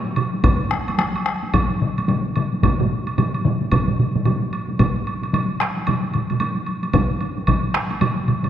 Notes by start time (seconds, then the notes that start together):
0.16 taiko mid, high woodblock
0.33 taiko high
0.44 taiko, taiko low-mid, taiko high, high woodblock
0.71 taiko rim
0.88 taiko high, high woodblock
0.99 taiko rim, taiko high, high woodblock
1.16 high woodblock
1.26 taiko rim
1.43 taiko high
1.54 taiko, taiko low-mid, taiko high, high woodblock
1.82 taiko low-mid
1.98 taiko high, high woodblock
2.08 taiko low-mid, taiko high, high woodblock
2.36 taiko low-mid, high woodblock
2.53 taiko high
2.63 taiko, taiko low-mid, taiko mid, taiko high, high woodblock
2.80 taiko low-mid, taiko mid
3.07 high woodblock
3.18 taiko low-mid, taiko mid, taiko high, high woodblock
3.34 high woodblock
3.45 taiko low-mid, taiko mid
3.61 taiko high
3.72 taiko, taiko low-mid, taiko mid, taiko high, high woodblock
3.88 taiko low-mid, taiko mid
3.99 taiko low-mid, taiko mid
4.15 taiko low-mid, taiko mid, taiko high
4.25 taiko low-mid, taiko mid, taiko high, high woodblock
4.42 taiko high
4.53 high woodblock
4.68 taiko high
4.79 taiko, taiko low-mid, taiko mid, taiko high, high woodblock
5.07 high woodblock
5.22 taiko high, high woodblock
5.33 taiko low-mid, taiko mid, taiko high, high woodblock
5.60 taiko rim, high woodblock
5.77 taiko high
5.87 taiko low-mid, taiko mid, taiko high, high woodblock
6.14 taiko low-mid, taiko mid, high woodblock
6.30 taiko low-mid, taiko mid, taiko high, high woodblock
6.40 taiko high, high woodblock
6.57 taiko high
6.66 high woodblock
6.83 taiko high, high woodblock
6.93 taiko, taiko low-mid, taiko mid, taiko high, high woodblock
7.21 high woodblock
7.37 taiko high
7.47 taiko, taiko low-mid, taiko mid, taiko high, high woodblock
7.74 taiko rim, high woodblock
7.90 taiko high, high woodblock
8.01 taiko low-mid, taiko mid, taiko high, high woodblock
8.28 taiko low-mid, taiko mid, high woodblock
8.43 taiko low-mid, taiko mid, taiko high, high woodblock